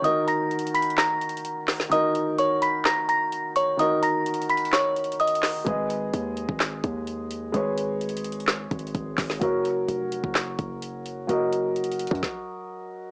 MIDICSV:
0, 0, Header, 1, 5, 480
1, 0, Start_track
1, 0, Key_signature, -6, "minor"
1, 0, Tempo, 468750
1, 42, Time_signature, 4, 2, 24, 8
1, 13425, End_track
2, 0, Start_track
2, 0, Title_t, "Synth bell"
2, 0, Program_c, 0, 98
2, 42, Note_on_c, 0, 87, 81
2, 51, Note_on_c, 0, 75, 67
2, 264, Note_off_c, 0, 87, 0
2, 268, Note_off_c, 0, 75, 0
2, 283, Note_on_c, 0, 82, 77
2, 291, Note_on_c, 0, 94, 63
2, 734, Note_off_c, 0, 82, 0
2, 738, Note_off_c, 0, 94, 0
2, 763, Note_on_c, 0, 83, 78
2, 772, Note_on_c, 0, 95, 65
2, 984, Note_off_c, 0, 83, 0
2, 989, Note_off_c, 0, 95, 0
2, 1002, Note_on_c, 0, 82, 81
2, 1011, Note_on_c, 0, 94, 63
2, 1921, Note_off_c, 0, 82, 0
2, 1926, Note_off_c, 0, 94, 0
2, 1962, Note_on_c, 0, 87, 94
2, 1971, Note_on_c, 0, 75, 74
2, 2413, Note_off_c, 0, 87, 0
2, 2418, Note_off_c, 0, 75, 0
2, 2443, Note_on_c, 0, 85, 79
2, 2450, Note_on_c, 0, 73, 64
2, 2664, Note_off_c, 0, 85, 0
2, 2668, Note_off_c, 0, 73, 0
2, 2682, Note_on_c, 0, 83, 77
2, 2690, Note_on_c, 0, 95, 65
2, 2903, Note_off_c, 0, 83, 0
2, 2908, Note_off_c, 0, 95, 0
2, 2922, Note_on_c, 0, 82, 75
2, 2930, Note_on_c, 0, 94, 66
2, 3143, Note_off_c, 0, 82, 0
2, 3148, Note_off_c, 0, 94, 0
2, 3161, Note_on_c, 0, 82, 80
2, 3170, Note_on_c, 0, 94, 64
2, 3613, Note_off_c, 0, 82, 0
2, 3618, Note_off_c, 0, 94, 0
2, 3643, Note_on_c, 0, 85, 80
2, 3651, Note_on_c, 0, 73, 64
2, 3864, Note_off_c, 0, 85, 0
2, 3868, Note_off_c, 0, 73, 0
2, 3884, Note_on_c, 0, 87, 86
2, 3893, Note_on_c, 0, 75, 63
2, 4105, Note_off_c, 0, 87, 0
2, 4109, Note_off_c, 0, 75, 0
2, 4122, Note_on_c, 0, 82, 79
2, 4131, Note_on_c, 0, 94, 59
2, 4573, Note_off_c, 0, 82, 0
2, 4578, Note_off_c, 0, 94, 0
2, 4603, Note_on_c, 0, 83, 81
2, 4611, Note_on_c, 0, 95, 64
2, 4824, Note_off_c, 0, 83, 0
2, 4829, Note_off_c, 0, 95, 0
2, 4843, Note_on_c, 0, 85, 80
2, 4851, Note_on_c, 0, 73, 61
2, 5294, Note_off_c, 0, 85, 0
2, 5298, Note_off_c, 0, 73, 0
2, 5323, Note_on_c, 0, 87, 82
2, 5331, Note_on_c, 0, 75, 61
2, 5774, Note_off_c, 0, 87, 0
2, 5778, Note_off_c, 0, 75, 0
2, 13425, End_track
3, 0, Start_track
3, 0, Title_t, "Felt piano"
3, 0, Program_c, 1, 0
3, 0, Control_c, 1, 64, 127
3, 0, Note_on_c, 1, 51, 70
3, 0, Note_on_c, 1, 63, 63
3, 0, Note_on_c, 1, 66, 61
3, 0, Note_on_c, 1, 70, 81
3, 19, Note_off_c, 1, 51, 0
3, 19, Note_on_c, 1, 51, 61
3, 33, Note_off_c, 1, 63, 0
3, 33, Note_on_c, 1, 63, 58
3, 46, Note_off_c, 1, 66, 0
3, 46, Note_on_c, 1, 66, 60
3, 59, Note_off_c, 1, 70, 0
3, 59, Note_on_c, 1, 70, 73
3, 1912, Note_off_c, 1, 51, 0
3, 1919, Note_off_c, 1, 63, 0
3, 1926, Note_off_c, 1, 66, 0
3, 1933, Note_off_c, 1, 70, 0
3, 1941, Note_on_c, 1, 51, 67
3, 1954, Note_on_c, 1, 63, 57
3, 1968, Note_on_c, 1, 66, 57
3, 1981, Note_on_c, 1, 70, 74
3, 3833, Note_off_c, 1, 51, 0
3, 3840, Note_off_c, 1, 63, 0
3, 3847, Note_off_c, 1, 66, 0
3, 3854, Note_off_c, 1, 70, 0
3, 3862, Note_on_c, 1, 51, 66
3, 3876, Note_on_c, 1, 63, 62
3, 3889, Note_on_c, 1, 66, 60
3, 3903, Note_on_c, 1, 70, 74
3, 5754, Note_off_c, 1, 51, 0
3, 5761, Note_off_c, 1, 63, 0
3, 5767, Note_off_c, 1, 66, 0
3, 5774, Note_off_c, 1, 70, 0
3, 5782, Note_on_c, 1, 56, 65
3, 5795, Note_on_c, 1, 68, 65
3, 5808, Note_on_c, 1, 71, 62
3, 5813, Control_c, 1, 64, 0
3, 5821, Note_on_c, 1, 75, 79
3, 5978, Control_c, 1, 64, 127
3, 7673, Note_off_c, 1, 56, 0
3, 7680, Note_off_c, 1, 68, 0
3, 7687, Note_off_c, 1, 71, 0
3, 7694, Note_off_c, 1, 75, 0
3, 7704, Note_on_c, 1, 56, 68
3, 7718, Note_on_c, 1, 68, 59
3, 7731, Note_on_c, 1, 71, 62
3, 7744, Note_on_c, 1, 73, 75
3, 9595, Note_off_c, 1, 56, 0
3, 9602, Note_off_c, 1, 68, 0
3, 9608, Note_off_c, 1, 71, 0
3, 9615, Note_off_c, 1, 73, 0
3, 9621, Note_on_c, 1, 54, 64
3, 9634, Note_on_c, 1, 66, 65
3, 9648, Note_on_c, 1, 70, 68
3, 9656, Control_c, 1, 64, 0
3, 9661, Note_on_c, 1, 73, 73
3, 9840, Control_c, 1, 64, 127
3, 11513, Note_off_c, 1, 54, 0
3, 11520, Note_off_c, 1, 66, 0
3, 11527, Note_off_c, 1, 70, 0
3, 11534, Note_off_c, 1, 73, 0
3, 11541, Note_on_c, 1, 54, 69
3, 11554, Note_on_c, 1, 66, 65
3, 11568, Note_on_c, 1, 70, 66
3, 11581, Note_on_c, 1, 75, 70
3, 12536, Control_c, 1, 64, 0
3, 13425, Note_off_c, 1, 54, 0
3, 13425, Note_off_c, 1, 66, 0
3, 13425, Note_off_c, 1, 70, 0
3, 13425, Note_off_c, 1, 75, 0
3, 13425, End_track
4, 0, Start_track
4, 0, Title_t, "808-style bass"
4, 0, Program_c, 2, 38
4, 5802, Note_on_c, 2, 32, 113
4, 6263, Note_off_c, 2, 32, 0
4, 6283, Note_on_c, 2, 39, 106
4, 6628, Note_off_c, 2, 39, 0
4, 6643, Note_on_c, 2, 32, 106
4, 6988, Note_off_c, 2, 32, 0
4, 7003, Note_on_c, 2, 39, 101
4, 7694, Note_off_c, 2, 39, 0
4, 7721, Note_on_c, 2, 32, 114
4, 8881, Note_off_c, 2, 32, 0
4, 8922, Note_on_c, 2, 32, 106
4, 9153, Note_off_c, 2, 32, 0
4, 9162, Note_on_c, 2, 32, 102
4, 9392, Note_off_c, 2, 32, 0
4, 9402, Note_on_c, 2, 32, 105
4, 9633, Note_off_c, 2, 32, 0
4, 9642, Note_on_c, 2, 30, 115
4, 10103, Note_off_c, 2, 30, 0
4, 10122, Note_on_c, 2, 29, 109
4, 10468, Note_off_c, 2, 29, 0
4, 10483, Note_on_c, 2, 30, 101
4, 10828, Note_off_c, 2, 30, 0
4, 10842, Note_on_c, 2, 30, 105
4, 11534, Note_off_c, 2, 30, 0
4, 11561, Note_on_c, 2, 30, 114
4, 12368, Note_off_c, 2, 30, 0
4, 12402, Note_on_c, 2, 42, 105
4, 12517, Note_off_c, 2, 42, 0
4, 13425, End_track
5, 0, Start_track
5, 0, Title_t, "Drums"
5, 43, Note_on_c, 9, 42, 71
5, 146, Note_off_c, 9, 42, 0
5, 283, Note_on_c, 9, 42, 76
5, 386, Note_off_c, 9, 42, 0
5, 523, Note_on_c, 9, 42, 46
5, 602, Note_off_c, 9, 42, 0
5, 602, Note_on_c, 9, 42, 61
5, 683, Note_off_c, 9, 42, 0
5, 683, Note_on_c, 9, 42, 71
5, 763, Note_off_c, 9, 42, 0
5, 763, Note_on_c, 9, 42, 78
5, 843, Note_off_c, 9, 42, 0
5, 843, Note_on_c, 9, 42, 62
5, 924, Note_off_c, 9, 42, 0
5, 924, Note_on_c, 9, 42, 45
5, 996, Note_on_c, 9, 39, 101
5, 1003, Note_on_c, 9, 38, 127
5, 1004, Note_off_c, 9, 42, 0
5, 1004, Note_on_c, 9, 42, 73
5, 1098, Note_off_c, 9, 39, 0
5, 1106, Note_off_c, 9, 38, 0
5, 1106, Note_off_c, 9, 42, 0
5, 1243, Note_on_c, 9, 42, 54
5, 1324, Note_off_c, 9, 42, 0
5, 1324, Note_on_c, 9, 42, 55
5, 1403, Note_off_c, 9, 42, 0
5, 1403, Note_on_c, 9, 42, 55
5, 1483, Note_off_c, 9, 42, 0
5, 1483, Note_on_c, 9, 42, 84
5, 1585, Note_off_c, 9, 42, 0
5, 1715, Note_on_c, 9, 39, 73
5, 1722, Note_on_c, 9, 38, 90
5, 1722, Note_on_c, 9, 46, 81
5, 1817, Note_off_c, 9, 39, 0
5, 1824, Note_off_c, 9, 38, 0
5, 1825, Note_off_c, 9, 46, 0
5, 1842, Note_on_c, 9, 38, 64
5, 1944, Note_off_c, 9, 38, 0
5, 1961, Note_on_c, 9, 42, 73
5, 2064, Note_off_c, 9, 42, 0
5, 2201, Note_on_c, 9, 42, 79
5, 2304, Note_off_c, 9, 42, 0
5, 2442, Note_on_c, 9, 42, 73
5, 2544, Note_off_c, 9, 42, 0
5, 2682, Note_on_c, 9, 42, 75
5, 2784, Note_off_c, 9, 42, 0
5, 2915, Note_on_c, 9, 39, 99
5, 2922, Note_on_c, 9, 38, 123
5, 2922, Note_on_c, 9, 42, 72
5, 3017, Note_off_c, 9, 39, 0
5, 3024, Note_off_c, 9, 38, 0
5, 3025, Note_off_c, 9, 42, 0
5, 3162, Note_on_c, 9, 42, 66
5, 3265, Note_off_c, 9, 42, 0
5, 3403, Note_on_c, 9, 42, 83
5, 3505, Note_off_c, 9, 42, 0
5, 3643, Note_on_c, 9, 42, 83
5, 3746, Note_off_c, 9, 42, 0
5, 3883, Note_on_c, 9, 42, 72
5, 3986, Note_off_c, 9, 42, 0
5, 4123, Note_on_c, 9, 42, 80
5, 4225, Note_off_c, 9, 42, 0
5, 4363, Note_on_c, 9, 42, 62
5, 4442, Note_off_c, 9, 42, 0
5, 4442, Note_on_c, 9, 42, 63
5, 4522, Note_off_c, 9, 42, 0
5, 4522, Note_on_c, 9, 42, 60
5, 4602, Note_off_c, 9, 42, 0
5, 4602, Note_on_c, 9, 42, 76
5, 4682, Note_off_c, 9, 42, 0
5, 4682, Note_on_c, 9, 42, 62
5, 4762, Note_off_c, 9, 42, 0
5, 4762, Note_on_c, 9, 42, 47
5, 4834, Note_on_c, 9, 39, 102
5, 4842, Note_off_c, 9, 42, 0
5, 4842, Note_on_c, 9, 38, 127
5, 4842, Note_on_c, 9, 42, 72
5, 4936, Note_off_c, 9, 39, 0
5, 4944, Note_off_c, 9, 38, 0
5, 4944, Note_off_c, 9, 42, 0
5, 5082, Note_on_c, 9, 42, 40
5, 5162, Note_off_c, 9, 42, 0
5, 5162, Note_on_c, 9, 42, 43
5, 5242, Note_off_c, 9, 42, 0
5, 5242, Note_on_c, 9, 42, 51
5, 5322, Note_off_c, 9, 42, 0
5, 5322, Note_on_c, 9, 42, 53
5, 5402, Note_off_c, 9, 42, 0
5, 5402, Note_on_c, 9, 42, 60
5, 5482, Note_off_c, 9, 42, 0
5, 5482, Note_on_c, 9, 42, 66
5, 5554, Note_on_c, 9, 39, 71
5, 5562, Note_on_c, 9, 38, 85
5, 5562, Note_on_c, 9, 46, 82
5, 5584, Note_off_c, 9, 42, 0
5, 5657, Note_off_c, 9, 39, 0
5, 5664, Note_off_c, 9, 38, 0
5, 5665, Note_off_c, 9, 46, 0
5, 5802, Note_on_c, 9, 36, 116
5, 5802, Note_on_c, 9, 42, 72
5, 5904, Note_off_c, 9, 42, 0
5, 5905, Note_off_c, 9, 36, 0
5, 6042, Note_on_c, 9, 42, 77
5, 6145, Note_off_c, 9, 42, 0
5, 6282, Note_on_c, 9, 42, 72
5, 6385, Note_off_c, 9, 42, 0
5, 6522, Note_on_c, 9, 42, 76
5, 6625, Note_off_c, 9, 42, 0
5, 6643, Note_on_c, 9, 36, 109
5, 6746, Note_off_c, 9, 36, 0
5, 6755, Note_on_c, 9, 39, 105
5, 6762, Note_on_c, 9, 38, 120
5, 6763, Note_on_c, 9, 42, 74
5, 6857, Note_off_c, 9, 39, 0
5, 6865, Note_off_c, 9, 38, 0
5, 6865, Note_off_c, 9, 42, 0
5, 7002, Note_on_c, 9, 36, 97
5, 7002, Note_on_c, 9, 42, 62
5, 7104, Note_off_c, 9, 42, 0
5, 7105, Note_off_c, 9, 36, 0
5, 7242, Note_on_c, 9, 42, 83
5, 7344, Note_off_c, 9, 42, 0
5, 7482, Note_on_c, 9, 42, 81
5, 7585, Note_off_c, 9, 42, 0
5, 7722, Note_on_c, 9, 42, 72
5, 7824, Note_off_c, 9, 42, 0
5, 7962, Note_on_c, 9, 42, 79
5, 8065, Note_off_c, 9, 42, 0
5, 8203, Note_on_c, 9, 42, 45
5, 8283, Note_off_c, 9, 42, 0
5, 8283, Note_on_c, 9, 42, 59
5, 8362, Note_off_c, 9, 42, 0
5, 8362, Note_on_c, 9, 42, 73
5, 8442, Note_off_c, 9, 42, 0
5, 8442, Note_on_c, 9, 42, 76
5, 8522, Note_off_c, 9, 42, 0
5, 8522, Note_on_c, 9, 42, 60
5, 8602, Note_off_c, 9, 42, 0
5, 8602, Note_on_c, 9, 42, 45
5, 8674, Note_on_c, 9, 39, 101
5, 8681, Note_off_c, 9, 42, 0
5, 8681, Note_on_c, 9, 38, 125
5, 8681, Note_on_c, 9, 42, 73
5, 8776, Note_off_c, 9, 39, 0
5, 8783, Note_off_c, 9, 38, 0
5, 8784, Note_off_c, 9, 42, 0
5, 8921, Note_on_c, 9, 42, 56
5, 8922, Note_on_c, 9, 36, 94
5, 9002, Note_off_c, 9, 42, 0
5, 9002, Note_on_c, 9, 42, 56
5, 9024, Note_off_c, 9, 36, 0
5, 9082, Note_off_c, 9, 42, 0
5, 9082, Note_on_c, 9, 42, 54
5, 9162, Note_off_c, 9, 42, 0
5, 9162, Note_on_c, 9, 36, 93
5, 9162, Note_on_c, 9, 42, 84
5, 9264, Note_off_c, 9, 36, 0
5, 9264, Note_off_c, 9, 42, 0
5, 9393, Note_on_c, 9, 39, 70
5, 9401, Note_on_c, 9, 36, 95
5, 9401, Note_on_c, 9, 38, 89
5, 9401, Note_on_c, 9, 46, 81
5, 9496, Note_off_c, 9, 39, 0
5, 9503, Note_off_c, 9, 38, 0
5, 9504, Note_off_c, 9, 36, 0
5, 9504, Note_off_c, 9, 46, 0
5, 9521, Note_on_c, 9, 38, 67
5, 9624, Note_off_c, 9, 38, 0
5, 9641, Note_on_c, 9, 42, 73
5, 9642, Note_on_c, 9, 36, 112
5, 9744, Note_off_c, 9, 36, 0
5, 9744, Note_off_c, 9, 42, 0
5, 9882, Note_on_c, 9, 42, 78
5, 9984, Note_off_c, 9, 42, 0
5, 10122, Note_on_c, 9, 42, 71
5, 10224, Note_off_c, 9, 42, 0
5, 10363, Note_on_c, 9, 42, 76
5, 10465, Note_off_c, 9, 42, 0
5, 10483, Note_on_c, 9, 36, 104
5, 10585, Note_off_c, 9, 36, 0
5, 10595, Note_on_c, 9, 39, 104
5, 10602, Note_on_c, 9, 38, 120
5, 10602, Note_on_c, 9, 42, 74
5, 10697, Note_off_c, 9, 39, 0
5, 10704, Note_off_c, 9, 38, 0
5, 10705, Note_off_c, 9, 42, 0
5, 10842, Note_on_c, 9, 36, 96
5, 10842, Note_on_c, 9, 42, 61
5, 10944, Note_off_c, 9, 42, 0
5, 10945, Note_off_c, 9, 36, 0
5, 11082, Note_on_c, 9, 42, 85
5, 11185, Note_off_c, 9, 42, 0
5, 11322, Note_on_c, 9, 42, 81
5, 11425, Note_off_c, 9, 42, 0
5, 11562, Note_on_c, 9, 42, 72
5, 11665, Note_off_c, 9, 42, 0
5, 11803, Note_on_c, 9, 42, 76
5, 11905, Note_off_c, 9, 42, 0
5, 12043, Note_on_c, 9, 42, 59
5, 12123, Note_off_c, 9, 42, 0
5, 12123, Note_on_c, 9, 42, 62
5, 12202, Note_off_c, 9, 42, 0
5, 12202, Note_on_c, 9, 42, 61
5, 12282, Note_off_c, 9, 42, 0
5, 12282, Note_on_c, 9, 42, 77
5, 12361, Note_off_c, 9, 42, 0
5, 12361, Note_on_c, 9, 42, 62
5, 12403, Note_on_c, 9, 36, 111
5, 12441, Note_off_c, 9, 42, 0
5, 12441, Note_on_c, 9, 42, 46
5, 12505, Note_off_c, 9, 36, 0
5, 12522, Note_on_c, 9, 36, 106
5, 12522, Note_on_c, 9, 38, 92
5, 12544, Note_off_c, 9, 42, 0
5, 12624, Note_off_c, 9, 36, 0
5, 12624, Note_off_c, 9, 38, 0
5, 13425, End_track
0, 0, End_of_file